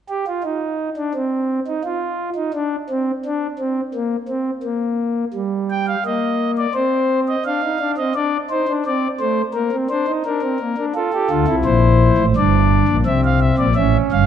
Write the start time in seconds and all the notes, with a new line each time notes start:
0.09 G4
0.27 F4
0.44 D#4
0.97 D4
1.15 C4
1.68 D#4
1.84 F4
2.36 D#4
2.53 D4
2.90 C4
3.25 D4
3.59 C4
3.94 A#3
4.29 C4
4.63 A#3
5.33 G3
5.70 G5
5.87 F5
6.05 A#3 D#5
6.57 D5
6.74 C4 C5
7.28 D#5
7.45 D4 F5
7.63 D#4
7.79 D4
7.98 C4 D#5
8.15 D4 D5
8.50 D#4 C5
8.68 D4
8.86 C4 D5
9.20 A3 C5
9.54 A#3 A#4
9.72 C4
9.90 D4 C5
10.08 D#4
10.25 D4 A#4
10.42 C4
10.60 A#3
10.77 D4
10.95 F4 A4
11.13 G4
11.30 D2 D3 F4
11.48 C2 C3 E4
11.65 A#1 A#2 C5
12.18 A1 A2
12.36 G1 G2 D4 D5
12.88 A#1 A#2
13.06 C2 C3 C4 E5
13.24 F5
13.41 E5
13.58 A#1 A#2 D5
13.75 A1 A2 C#4 E5
14.12 G1 G2 F5